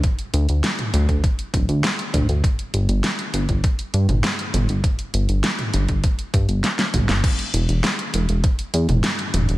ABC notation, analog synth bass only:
X:1
M:4/4
L:1/16
Q:1/4=100
K:G
V:1 name="Analog synth bass" clef=bass
z2 D,, D,, z2 D,, D,, z2 D,,, D,, z2 D,, D,, | z2 G,,, G,,, z2 G,,, G,,, z2 G,, G,,, z2 G,,, G,,, | z2 G,,, G,,, z2 G,,, G,,, z2 G,, G,,, z2 G,,, G,,, | z2 E,,, E,,, z2 E,,, E,,, z2 E,, E,,, z2 E,,, E,,, |]